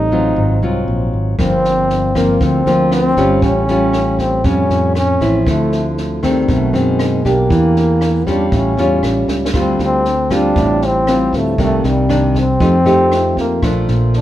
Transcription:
Already playing: A1 A2 D#4
0.12 F#3 C4 F4
0.36 G#1 G#2
0.62 C2 F#3 C4 F4
0.88 A#1
1.13 G#1
1.39 G1 G2 F3 A#3 C4, kick, cross-stick, snare
1.65 snare
1.90 snare
2.15 F3 A#3 C4, kick, cross-stick, snare
2.41 D2 D3 C4, kick, snare
2.66 D2 F3 A#3 C4, snare
2.92 C4, cross-stick, snare
3.17 G1 G3 C#4 F4, kick, snare
3.42 A1 A2 C#4, kick, snare
3.68 G3 C#4 F4, snare
3.93 cross-stick, snare
4.19 C4, kick, snare
4.44 F2 A2 G3 C#4 F4, kick, snare
4.70 F2, snare
4.95 C#4, cross-stick, snare
5.21 A1 F3 C4 E4, kick, snare
5.46 D2 D3 A3, kick, cross-stick, snare
5.72 snare
5.98 snare
6.23 D#3 G3 A3 C4, kick, cross-stick, snare
6.48 B1 B2, kick, snare
6.52 A3
6.73 F#2 D#3 C4, snare
6.78 G#3
6.99 cross-stick, snare
7.25 B1 A#3 D4 G4, kick, snare
7.29 A#3
7.50 E2 E3, kick, snare
7.76 snare
8.01 cross-stick, snare
8.27 G3 C#4 D4 F4, kick, snare
8.48 A1 D4, kick, snare
8.53 A2 C#4
8.77 E2 G3 C#4 F4, snare
9.03 A1, cross-stick, snare
9.28 C#2, snare
9.45 snare
9.54 D2 D3 G3 C4 F4, kick, cross-stick, snare
9.79 D2, snare
9.85 C4
10.05 snare
10.30 G3 C4 D4 F4, kick, cross-stick, snare
10.56 A1 A2, kick, snare
10.82 snare
10.86 C4
11.07 G3 C4 F4, cross-stick, snare
11.33 D2, kick, snare
11.37 A3
11.58 C2 C3 D#3 A#3 D4, kick, snare
11.63 A3
11.84 C2 G3, snare
12.09 D#3 A#3 D4, cross-stick, snare
12.35 kick, snare
12.39 C4
12.60 F2 F3 A3 D#4 G4, kick, snare
12.86 A3 D#4 G4, snare
13.12 cross-stick, snare
13.37 F2 A#3, kick, snare
13.62 A#1 A#2 F3 A3 D4, kick, cross-stick, snare
13.88 A#1, snare
14.13 D4, snare

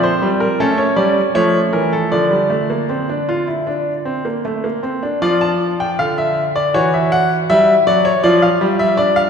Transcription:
Already playing: C4
0.03 C5
0.22 G3
0.40 A#4
0.60 A3 C#4 A4
0.78 C#5
0.96 G3 D5
1.35 F3 A3 C#5
1.73 E3 A#4
1.93 A4
2.12 D3 F3 D5
2.31 G3
2.50 A3
2.70 A#3
2.89 C4
3.10 D4
3.29 F4
3.47 E4
3.67 D4
4.05 C4
4.25 A#3
4.45 A3
4.64 A#3
4.83 C4
5.03 D4
5.22 F3 F4 D5
5.41 A5
5.80 G5
5.99 D3 F5
6.18 E5
6.56 D5
6.74 E3 F#4 C#5
6.94 E5
7.12 F#5
7.50 G3 E4 E5
7.87 F#3 D5
8.05 C#5
8.24 F3 F4 D5
8.42 F5
8.61 G3
8.79 E5
8.97 D4 D5
9.16 F5

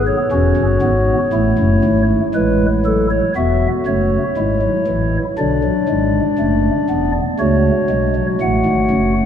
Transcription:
Already playing: G#1 G#2 B3 G#4
0.07 C#5
0.32 E1 E2 C#4 F#4
0.57 F#1 F#2
0.82 G#1 G#2 B3
1.33 A1 A2 A3 E4
1.59 F#1 F#2
1.84 G#1 G#2
2.34 A1 A2 G#3 B4
2.85 F#3 A4
3.11 C#5
3.36 E1 E2 B3 F#4 E5
3.86 F#1 F#2 A3 C#5
4.37 G#1 G#2 G#3 E4
4.62 F#3
4.87 A1 A2 E3
5.38 B1 B2 D3 D4 D5
5.64 F#3
5.89 G#1 G#2 G#3
6.39 F#1 F#2 A3
6.90 E1 E2 B3
7.39 C#2 C#3 A3 F#4 C#5
7.90 B1 B2 G#3
8.16 F#3
8.41 A1 A2 A3 F#5
8.66 G#1 G#2
8.91 F#1 F#2

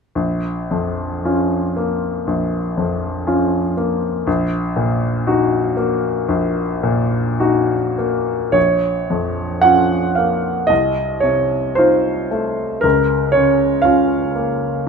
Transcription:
0.15 A#1
0.71 F2
1.25 C#4 F4
1.76 A#3
2.27 A#1
2.77 F2
3.27 C#4 F4
3.77 A#3
4.27 A#1
4.76 A#2
5.27 D#4 F#4
5.77 A#3
6.29 A#1
6.83 A#2
7.40 D#4 F#4
7.98 A#3
8.52 A#1 C#5
9.10 F2
9.62 C#4 F4 F#5
10.15 A#3 F5
10.67 C2 D#5
11.20 C3 C#5
11.75 D#4 F4 C5
12.31 A3
12.81 C#2 A#4
13.32 C#3 C#5
13.82 C#4 F4 F5
14.35 A#3

